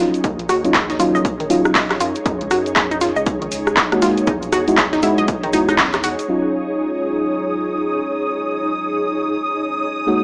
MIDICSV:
0, 0, Header, 1, 7, 480
1, 0, Start_track
1, 0, Key_signature, -6, "minor"
1, 0, Tempo, 504202
1, 228, Time_signature, 4, 2, 24, 8
1, 9746, End_track
2, 0, Start_track
2, 0, Title_t, "String machine"
2, 0, Program_c, 0, 50
2, 5987, Note_on_c, 0, 87, 82
2, 9746, Note_off_c, 0, 87, 0
2, 9746, End_track
3, 0, Start_track
3, 0, Title_t, "Ambient pad"
3, 0, Program_c, 1, 92
3, 0, Note_on_c, 1, 63, 91
3, 0, Note_on_c, 1, 68, 91
3, 0, Note_on_c, 1, 73, 73
3, 9746, Note_off_c, 1, 63, 0
3, 9746, Note_off_c, 1, 68, 0
3, 9746, Note_off_c, 1, 73, 0
3, 9746, End_track
4, 0, Start_track
4, 0, Title_t, "Synth arpeggio sound"
4, 0, Program_c, 2, 84
4, 227, Note_on_c, 2, 63, 83
4, 268, Note_off_c, 2, 63, 0
4, 468, Note_on_c, 2, 66, 102
4, 536, Note_off_c, 2, 66, 0
4, 708, Note_on_c, 2, 68, 81
4, 809, Note_off_c, 2, 68, 0
4, 854, Note_on_c, 2, 63, 100
4, 920, Note_off_c, 2, 63, 0
4, 948, Note_on_c, 2, 65, 79
4, 1016, Note_off_c, 2, 65, 0
4, 1093, Note_on_c, 2, 75, 76
4, 1137, Note_off_c, 2, 75, 0
4, 1334, Note_on_c, 2, 51, 78
4, 1360, Note_off_c, 2, 51, 0
4, 1669, Note_on_c, 2, 75, 82
4, 1770, Note_off_c, 2, 75, 0
4, 1908, Note_on_c, 2, 65, 75
4, 1976, Note_off_c, 2, 65, 0
4, 2148, Note_on_c, 2, 63, 85
4, 2189, Note_off_c, 2, 63, 0
4, 2388, Note_on_c, 2, 66, 103
4, 2455, Note_off_c, 2, 66, 0
4, 2628, Note_on_c, 2, 68, 82
4, 2729, Note_off_c, 2, 68, 0
4, 2772, Note_on_c, 2, 63, 101
4, 2839, Note_off_c, 2, 63, 0
4, 2868, Note_on_c, 2, 65, 79
4, 2935, Note_off_c, 2, 65, 0
4, 3012, Note_on_c, 2, 75, 77
4, 3057, Note_off_c, 2, 75, 0
4, 3253, Note_on_c, 2, 51, 75
4, 3280, Note_off_c, 2, 51, 0
4, 3587, Note_on_c, 2, 75, 81
4, 3689, Note_off_c, 2, 75, 0
4, 3827, Note_on_c, 2, 65, 76
4, 3895, Note_off_c, 2, 65, 0
4, 4067, Note_on_c, 2, 63, 82
4, 4108, Note_off_c, 2, 63, 0
4, 4307, Note_on_c, 2, 66, 105
4, 4375, Note_off_c, 2, 66, 0
4, 4546, Note_on_c, 2, 68, 83
4, 4649, Note_off_c, 2, 68, 0
4, 4693, Note_on_c, 2, 63, 99
4, 4759, Note_off_c, 2, 63, 0
4, 4787, Note_on_c, 2, 64, 80
4, 4855, Note_off_c, 2, 64, 0
4, 4932, Note_on_c, 2, 75, 75
4, 4977, Note_off_c, 2, 75, 0
4, 5172, Note_on_c, 2, 51, 77
4, 5199, Note_off_c, 2, 51, 0
4, 5267, Note_on_c, 2, 63, 79
4, 5335, Note_off_c, 2, 63, 0
4, 5412, Note_on_c, 2, 63, 104
4, 5457, Note_off_c, 2, 63, 0
4, 5507, Note_on_c, 2, 61, 85
4, 5609, Note_off_c, 2, 61, 0
4, 5747, Note_on_c, 2, 66, 78
4, 5815, Note_off_c, 2, 66, 0
4, 9746, End_track
5, 0, Start_track
5, 0, Title_t, "FM electric piano"
5, 0, Program_c, 3, 5
5, 0, Note_on_c, 3, 54, 78
5, 0, Note_on_c, 3, 61, 74
5, 0, Note_on_c, 3, 63, 76
5, 0, Note_on_c, 3, 65, 87
5, 219, Note_off_c, 3, 54, 0
5, 220, Note_off_c, 3, 61, 0
5, 221, Note_off_c, 3, 63, 0
5, 222, Note_off_c, 3, 65, 0
5, 610, Note_on_c, 3, 54, 88
5, 613, Note_on_c, 3, 61, 79
5, 615, Note_on_c, 3, 63, 79
5, 617, Note_on_c, 3, 65, 96
5, 736, Note_off_c, 3, 54, 0
5, 737, Note_off_c, 3, 61, 0
5, 738, Note_off_c, 3, 63, 0
5, 739, Note_off_c, 3, 65, 0
5, 946, Note_on_c, 3, 54, 95
5, 948, Note_on_c, 3, 61, 88
5, 950, Note_on_c, 3, 63, 89
5, 952, Note_on_c, 3, 65, 107
5, 1179, Note_off_c, 3, 54, 0
5, 1180, Note_off_c, 3, 61, 0
5, 1181, Note_off_c, 3, 63, 0
5, 1182, Note_off_c, 3, 65, 0
5, 1425, Note_on_c, 3, 54, 94
5, 1427, Note_on_c, 3, 61, 85
5, 1429, Note_on_c, 3, 63, 86
5, 1431, Note_on_c, 3, 65, 105
5, 1895, Note_off_c, 3, 54, 0
5, 1896, Note_off_c, 3, 61, 0
5, 1897, Note_off_c, 3, 63, 0
5, 1898, Note_off_c, 3, 65, 0
5, 3730, Note_on_c, 3, 56, 81
5, 3732, Note_on_c, 3, 58, 75
5, 3734, Note_on_c, 3, 63, 75
5, 3736, Note_on_c, 3, 66, 90
5, 3812, Note_off_c, 3, 56, 0
5, 3813, Note_off_c, 3, 58, 0
5, 3814, Note_off_c, 3, 63, 0
5, 3815, Note_off_c, 3, 66, 0
5, 3825, Note_on_c, 3, 56, 82
5, 3827, Note_on_c, 3, 58, 75
5, 3829, Note_on_c, 3, 63, 74
5, 3831, Note_on_c, 3, 66, 92
5, 4055, Note_off_c, 3, 56, 0
5, 4056, Note_off_c, 3, 58, 0
5, 4057, Note_off_c, 3, 63, 0
5, 4058, Note_off_c, 3, 66, 0
5, 4451, Note_on_c, 3, 56, 88
5, 4453, Note_on_c, 3, 63, 81
5, 4455, Note_on_c, 3, 64, 80
5, 4457, Note_on_c, 3, 66, 96
5, 4576, Note_off_c, 3, 56, 0
5, 4577, Note_off_c, 3, 63, 0
5, 4578, Note_off_c, 3, 64, 0
5, 4579, Note_off_c, 3, 66, 0
5, 4785, Note_on_c, 3, 56, 98
5, 4787, Note_on_c, 3, 63, 88
5, 4789, Note_on_c, 3, 64, 91
5, 4791, Note_on_c, 3, 66, 108
5, 5019, Note_off_c, 3, 56, 0
5, 5020, Note_off_c, 3, 63, 0
5, 5021, Note_off_c, 3, 64, 0
5, 5022, Note_off_c, 3, 66, 0
5, 5265, Note_on_c, 3, 56, 74
5, 5267, Note_on_c, 3, 63, 68
5, 5269, Note_on_c, 3, 64, 66
5, 5271, Note_on_c, 3, 66, 80
5, 5499, Note_off_c, 3, 56, 0
5, 5500, Note_off_c, 3, 63, 0
5, 5501, Note_off_c, 3, 64, 0
5, 5502, Note_off_c, 3, 66, 0
5, 5982, Note_on_c, 3, 54, 70
5, 5986, Note_on_c, 3, 61, 63
5, 5990, Note_on_c, 3, 63, 63
5, 5994, Note_on_c, 3, 65, 75
5, 9562, Note_off_c, 3, 54, 0
5, 9564, Note_off_c, 3, 61, 0
5, 9566, Note_off_c, 3, 63, 0
5, 9568, Note_off_c, 3, 65, 0
5, 9582, Note_on_c, 3, 56, 72
5, 9586, Note_on_c, 3, 58, 64
5, 9590, Note_on_c, 3, 63, 65
5, 9595, Note_on_c, 3, 66, 79
5, 9746, Note_off_c, 3, 56, 0
5, 9746, Note_off_c, 3, 58, 0
5, 9746, Note_off_c, 3, 63, 0
5, 9746, Note_off_c, 3, 66, 0
5, 9746, End_track
6, 0, Start_track
6, 0, Title_t, "Analog synth bass"
6, 0, Program_c, 4, 38
6, 0, Note_on_c, 4, 34, 95
6, 109, Note_off_c, 4, 34, 0
6, 228, Note_on_c, 4, 39, 101
6, 350, Note_off_c, 4, 39, 0
6, 372, Note_on_c, 4, 34, 96
6, 452, Note_off_c, 4, 34, 0
6, 468, Note_on_c, 4, 39, 82
6, 1055, Note_off_c, 4, 39, 0
6, 1093, Note_on_c, 4, 34, 84
6, 1403, Note_off_c, 4, 34, 0
6, 1429, Note_on_c, 4, 27, 97
6, 1884, Note_off_c, 4, 27, 0
6, 1908, Note_on_c, 4, 42, 97
6, 2030, Note_off_c, 4, 42, 0
6, 2148, Note_on_c, 4, 42, 100
6, 2270, Note_off_c, 4, 42, 0
6, 2293, Note_on_c, 4, 37, 99
6, 2372, Note_off_c, 4, 37, 0
6, 2388, Note_on_c, 4, 42, 80
6, 2975, Note_off_c, 4, 42, 0
6, 3013, Note_on_c, 4, 37, 86
6, 3563, Note_off_c, 4, 37, 0
6, 3827, Note_on_c, 4, 37, 99
6, 3949, Note_off_c, 4, 37, 0
6, 4067, Note_on_c, 4, 40, 97
6, 4189, Note_off_c, 4, 40, 0
6, 4213, Note_on_c, 4, 35, 100
6, 4292, Note_off_c, 4, 35, 0
6, 4307, Note_on_c, 4, 40, 80
6, 4895, Note_off_c, 4, 40, 0
6, 4933, Note_on_c, 4, 35, 86
6, 5243, Note_off_c, 4, 35, 0
6, 5267, Note_on_c, 4, 40, 83
6, 5855, Note_off_c, 4, 40, 0
6, 9746, End_track
7, 0, Start_track
7, 0, Title_t, "Drums"
7, 134, Note_on_c, 9, 42, 34
7, 140, Note_on_c, 9, 69, 36
7, 228, Note_off_c, 9, 42, 0
7, 228, Note_off_c, 9, 69, 0
7, 228, Note_on_c, 9, 36, 111
7, 228, Note_on_c, 9, 42, 75
7, 228, Note_on_c, 9, 69, 47
7, 323, Note_off_c, 9, 36, 0
7, 323, Note_off_c, 9, 42, 0
7, 323, Note_off_c, 9, 69, 0
7, 374, Note_on_c, 9, 42, 51
7, 468, Note_on_c, 9, 69, 87
7, 469, Note_off_c, 9, 42, 0
7, 469, Note_on_c, 9, 37, 77
7, 469, Note_on_c, 9, 42, 65
7, 469, Note_on_c, 9, 46, 96
7, 564, Note_off_c, 9, 37, 0
7, 564, Note_off_c, 9, 42, 0
7, 564, Note_off_c, 9, 46, 0
7, 564, Note_off_c, 9, 69, 0
7, 614, Note_on_c, 9, 69, 36
7, 615, Note_on_c, 9, 42, 36
7, 705, Note_off_c, 9, 69, 0
7, 705, Note_on_c, 9, 69, 44
7, 708, Note_off_c, 9, 42, 0
7, 708, Note_on_c, 9, 36, 96
7, 708, Note_on_c, 9, 38, 117
7, 708, Note_on_c, 9, 39, 110
7, 708, Note_on_c, 9, 42, 87
7, 709, Note_off_c, 9, 42, 0
7, 709, Note_on_c, 9, 42, 76
7, 800, Note_off_c, 9, 69, 0
7, 803, Note_off_c, 9, 38, 0
7, 803, Note_off_c, 9, 39, 0
7, 804, Note_off_c, 9, 36, 0
7, 805, Note_off_c, 9, 42, 0
7, 854, Note_on_c, 9, 38, 40
7, 854, Note_on_c, 9, 42, 50
7, 858, Note_on_c, 9, 69, 32
7, 949, Note_off_c, 9, 38, 0
7, 949, Note_off_c, 9, 42, 0
7, 949, Note_off_c, 9, 69, 0
7, 949, Note_on_c, 9, 42, 66
7, 949, Note_on_c, 9, 46, 88
7, 949, Note_on_c, 9, 69, 90
7, 1044, Note_off_c, 9, 42, 0
7, 1044, Note_off_c, 9, 46, 0
7, 1044, Note_off_c, 9, 69, 0
7, 1094, Note_on_c, 9, 69, 34
7, 1188, Note_on_c, 9, 36, 113
7, 1189, Note_on_c, 9, 42, 74
7, 1190, Note_off_c, 9, 69, 0
7, 1196, Note_on_c, 9, 69, 51
7, 1283, Note_off_c, 9, 36, 0
7, 1284, Note_off_c, 9, 42, 0
7, 1291, Note_off_c, 9, 69, 0
7, 1333, Note_on_c, 9, 42, 51
7, 1334, Note_off_c, 9, 42, 0
7, 1334, Note_on_c, 9, 42, 42
7, 1428, Note_on_c, 9, 46, 97
7, 1429, Note_off_c, 9, 42, 0
7, 1429, Note_on_c, 9, 42, 63
7, 1432, Note_on_c, 9, 69, 82
7, 1523, Note_off_c, 9, 46, 0
7, 1524, Note_off_c, 9, 42, 0
7, 1528, Note_off_c, 9, 69, 0
7, 1570, Note_on_c, 9, 69, 36
7, 1573, Note_on_c, 9, 37, 84
7, 1665, Note_off_c, 9, 69, 0
7, 1666, Note_on_c, 9, 39, 111
7, 1668, Note_on_c, 9, 36, 100
7, 1668, Note_on_c, 9, 38, 118
7, 1668, Note_on_c, 9, 42, 78
7, 1668, Note_on_c, 9, 46, 80
7, 1669, Note_off_c, 9, 37, 0
7, 1672, Note_on_c, 9, 69, 45
7, 1762, Note_off_c, 9, 39, 0
7, 1763, Note_off_c, 9, 36, 0
7, 1763, Note_off_c, 9, 38, 0
7, 1763, Note_off_c, 9, 42, 0
7, 1763, Note_off_c, 9, 46, 0
7, 1767, Note_off_c, 9, 69, 0
7, 1812, Note_on_c, 9, 39, 34
7, 1814, Note_on_c, 9, 37, 83
7, 1814, Note_on_c, 9, 38, 46
7, 1814, Note_on_c, 9, 42, 52
7, 1907, Note_off_c, 9, 39, 0
7, 1907, Note_on_c, 9, 69, 85
7, 1908, Note_off_c, 9, 42, 0
7, 1908, Note_on_c, 9, 42, 65
7, 1908, Note_on_c, 9, 46, 86
7, 1909, Note_off_c, 9, 37, 0
7, 1909, Note_off_c, 9, 38, 0
7, 2002, Note_off_c, 9, 69, 0
7, 2003, Note_off_c, 9, 42, 0
7, 2003, Note_off_c, 9, 46, 0
7, 2049, Note_on_c, 9, 69, 37
7, 2054, Note_on_c, 9, 42, 36
7, 2144, Note_off_c, 9, 69, 0
7, 2148, Note_off_c, 9, 42, 0
7, 2148, Note_on_c, 9, 36, 113
7, 2148, Note_on_c, 9, 42, 84
7, 2149, Note_off_c, 9, 42, 0
7, 2149, Note_on_c, 9, 42, 80
7, 2149, Note_on_c, 9, 69, 49
7, 2243, Note_off_c, 9, 36, 0
7, 2244, Note_off_c, 9, 42, 0
7, 2244, Note_off_c, 9, 69, 0
7, 2294, Note_on_c, 9, 42, 55
7, 2386, Note_on_c, 9, 69, 84
7, 2388, Note_off_c, 9, 42, 0
7, 2388, Note_on_c, 9, 42, 68
7, 2389, Note_on_c, 9, 37, 78
7, 2389, Note_on_c, 9, 46, 98
7, 2482, Note_off_c, 9, 69, 0
7, 2484, Note_off_c, 9, 37, 0
7, 2484, Note_off_c, 9, 42, 0
7, 2484, Note_off_c, 9, 46, 0
7, 2534, Note_on_c, 9, 42, 38
7, 2540, Note_on_c, 9, 69, 39
7, 2623, Note_off_c, 9, 69, 0
7, 2623, Note_on_c, 9, 69, 48
7, 2627, Note_on_c, 9, 39, 115
7, 2628, Note_off_c, 9, 42, 0
7, 2628, Note_on_c, 9, 36, 98
7, 2628, Note_on_c, 9, 38, 117
7, 2628, Note_on_c, 9, 42, 90
7, 2629, Note_off_c, 9, 42, 0
7, 2629, Note_on_c, 9, 42, 82
7, 2718, Note_off_c, 9, 69, 0
7, 2722, Note_off_c, 9, 39, 0
7, 2723, Note_off_c, 9, 36, 0
7, 2723, Note_off_c, 9, 38, 0
7, 2724, Note_off_c, 9, 42, 0
7, 2772, Note_on_c, 9, 69, 32
7, 2774, Note_on_c, 9, 42, 54
7, 2863, Note_off_c, 9, 69, 0
7, 2863, Note_on_c, 9, 69, 78
7, 2868, Note_off_c, 9, 42, 0
7, 2868, Note_on_c, 9, 38, 37
7, 2868, Note_on_c, 9, 42, 67
7, 2868, Note_on_c, 9, 46, 87
7, 2958, Note_off_c, 9, 69, 0
7, 2963, Note_off_c, 9, 38, 0
7, 2963, Note_off_c, 9, 42, 0
7, 2963, Note_off_c, 9, 46, 0
7, 3008, Note_on_c, 9, 69, 35
7, 3104, Note_off_c, 9, 69, 0
7, 3105, Note_on_c, 9, 69, 49
7, 3108, Note_on_c, 9, 36, 113
7, 3108, Note_on_c, 9, 42, 78
7, 3200, Note_off_c, 9, 69, 0
7, 3203, Note_off_c, 9, 36, 0
7, 3203, Note_off_c, 9, 42, 0
7, 3254, Note_on_c, 9, 42, 53
7, 3346, Note_on_c, 9, 69, 89
7, 3348, Note_off_c, 9, 42, 0
7, 3348, Note_on_c, 9, 42, 66
7, 3348, Note_on_c, 9, 46, 97
7, 3442, Note_off_c, 9, 69, 0
7, 3443, Note_off_c, 9, 42, 0
7, 3444, Note_off_c, 9, 46, 0
7, 3493, Note_on_c, 9, 69, 34
7, 3494, Note_on_c, 9, 37, 86
7, 3587, Note_off_c, 9, 69, 0
7, 3587, Note_on_c, 9, 39, 118
7, 3587, Note_on_c, 9, 69, 47
7, 3588, Note_on_c, 9, 36, 100
7, 3588, Note_on_c, 9, 38, 115
7, 3588, Note_on_c, 9, 42, 80
7, 3589, Note_off_c, 9, 37, 0
7, 3682, Note_off_c, 9, 39, 0
7, 3682, Note_off_c, 9, 69, 0
7, 3683, Note_off_c, 9, 36, 0
7, 3683, Note_off_c, 9, 38, 0
7, 3684, Note_off_c, 9, 42, 0
7, 3733, Note_on_c, 9, 37, 82
7, 3733, Note_on_c, 9, 42, 53
7, 3826, Note_on_c, 9, 69, 90
7, 3828, Note_off_c, 9, 42, 0
7, 3828, Note_on_c, 9, 38, 47
7, 3828, Note_on_c, 9, 42, 67
7, 3828, Note_on_c, 9, 46, 89
7, 3829, Note_off_c, 9, 37, 0
7, 3921, Note_off_c, 9, 69, 0
7, 3923, Note_off_c, 9, 38, 0
7, 3923, Note_off_c, 9, 42, 0
7, 3923, Note_off_c, 9, 46, 0
7, 3972, Note_on_c, 9, 69, 34
7, 3974, Note_on_c, 9, 42, 37
7, 4064, Note_off_c, 9, 69, 0
7, 4064, Note_on_c, 9, 69, 51
7, 4067, Note_off_c, 9, 42, 0
7, 4067, Note_on_c, 9, 42, 86
7, 4068, Note_off_c, 9, 42, 0
7, 4068, Note_on_c, 9, 36, 118
7, 4068, Note_on_c, 9, 42, 83
7, 4159, Note_off_c, 9, 69, 0
7, 4163, Note_off_c, 9, 36, 0
7, 4163, Note_off_c, 9, 42, 0
7, 4209, Note_on_c, 9, 69, 33
7, 4213, Note_on_c, 9, 42, 56
7, 4305, Note_off_c, 9, 69, 0
7, 4307, Note_off_c, 9, 42, 0
7, 4307, Note_on_c, 9, 42, 67
7, 4308, Note_on_c, 9, 37, 79
7, 4308, Note_on_c, 9, 46, 98
7, 4308, Note_on_c, 9, 69, 88
7, 4403, Note_off_c, 9, 37, 0
7, 4403, Note_off_c, 9, 42, 0
7, 4403, Note_off_c, 9, 46, 0
7, 4403, Note_off_c, 9, 69, 0
7, 4453, Note_on_c, 9, 42, 39
7, 4453, Note_on_c, 9, 69, 39
7, 4545, Note_on_c, 9, 39, 122
7, 4547, Note_off_c, 9, 42, 0
7, 4547, Note_on_c, 9, 38, 114
7, 4547, Note_on_c, 9, 42, 88
7, 4548, Note_off_c, 9, 69, 0
7, 4548, Note_on_c, 9, 36, 101
7, 4555, Note_on_c, 9, 69, 50
7, 4640, Note_off_c, 9, 39, 0
7, 4642, Note_off_c, 9, 38, 0
7, 4642, Note_off_c, 9, 42, 0
7, 4643, Note_off_c, 9, 36, 0
7, 4650, Note_off_c, 9, 69, 0
7, 4693, Note_on_c, 9, 38, 42
7, 4693, Note_on_c, 9, 42, 55
7, 4693, Note_on_c, 9, 69, 36
7, 4784, Note_off_c, 9, 69, 0
7, 4784, Note_on_c, 9, 69, 84
7, 4788, Note_off_c, 9, 38, 0
7, 4788, Note_off_c, 9, 42, 0
7, 4788, Note_on_c, 9, 42, 69
7, 4788, Note_on_c, 9, 46, 89
7, 4879, Note_off_c, 9, 69, 0
7, 4883, Note_off_c, 9, 42, 0
7, 4883, Note_off_c, 9, 46, 0
7, 4929, Note_on_c, 9, 69, 38
7, 4933, Note_on_c, 9, 42, 37
7, 5025, Note_off_c, 9, 69, 0
7, 5026, Note_on_c, 9, 69, 54
7, 5027, Note_off_c, 9, 42, 0
7, 5027, Note_on_c, 9, 42, 88
7, 5028, Note_off_c, 9, 42, 0
7, 5028, Note_on_c, 9, 36, 112
7, 5028, Note_on_c, 9, 42, 78
7, 5121, Note_off_c, 9, 69, 0
7, 5123, Note_off_c, 9, 36, 0
7, 5124, Note_off_c, 9, 42, 0
7, 5172, Note_on_c, 9, 42, 44
7, 5174, Note_off_c, 9, 42, 0
7, 5174, Note_on_c, 9, 42, 54
7, 5264, Note_on_c, 9, 69, 86
7, 5268, Note_off_c, 9, 42, 0
7, 5268, Note_on_c, 9, 42, 66
7, 5268, Note_on_c, 9, 46, 100
7, 5360, Note_off_c, 9, 69, 0
7, 5363, Note_off_c, 9, 42, 0
7, 5363, Note_off_c, 9, 46, 0
7, 5412, Note_on_c, 9, 69, 35
7, 5414, Note_on_c, 9, 37, 81
7, 5414, Note_on_c, 9, 42, 38
7, 5504, Note_off_c, 9, 69, 0
7, 5504, Note_on_c, 9, 69, 50
7, 5507, Note_on_c, 9, 36, 99
7, 5507, Note_on_c, 9, 39, 121
7, 5508, Note_off_c, 9, 42, 0
7, 5508, Note_on_c, 9, 38, 117
7, 5508, Note_on_c, 9, 42, 82
7, 5508, Note_on_c, 9, 46, 80
7, 5509, Note_off_c, 9, 37, 0
7, 5599, Note_off_c, 9, 69, 0
7, 5602, Note_off_c, 9, 39, 0
7, 5603, Note_off_c, 9, 36, 0
7, 5603, Note_off_c, 9, 38, 0
7, 5603, Note_off_c, 9, 46, 0
7, 5604, Note_off_c, 9, 42, 0
7, 5646, Note_on_c, 9, 69, 34
7, 5651, Note_on_c, 9, 39, 36
7, 5653, Note_on_c, 9, 37, 79
7, 5653, Note_on_c, 9, 38, 46
7, 5653, Note_on_c, 9, 42, 55
7, 5741, Note_off_c, 9, 69, 0
7, 5746, Note_off_c, 9, 39, 0
7, 5746, Note_on_c, 9, 69, 84
7, 5748, Note_off_c, 9, 37, 0
7, 5748, Note_off_c, 9, 38, 0
7, 5748, Note_off_c, 9, 42, 0
7, 5748, Note_on_c, 9, 42, 67
7, 5748, Note_on_c, 9, 46, 89
7, 5841, Note_off_c, 9, 69, 0
7, 5843, Note_off_c, 9, 42, 0
7, 5843, Note_off_c, 9, 46, 0
7, 5893, Note_on_c, 9, 42, 39
7, 5894, Note_on_c, 9, 69, 38
7, 5989, Note_off_c, 9, 42, 0
7, 5989, Note_off_c, 9, 69, 0
7, 9746, End_track
0, 0, End_of_file